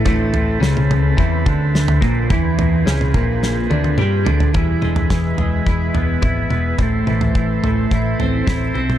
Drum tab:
SD |----o-------o---|----o---o-------|----o-----------|------------o---|
T1 |----------------|----------oo----|----------------|----------------|
T2 |-----oo---o-----|-----oo-----o---|--o---------o-o-|--o---------o-oo|
FT |o-o---o---o--o--|o-o---o-------oo|o--o--o---o-o---|o--o--o---o-o---|
BD |o-------o-o---o-|o-----o---------|o---o---o---o---|o---o---o---o---|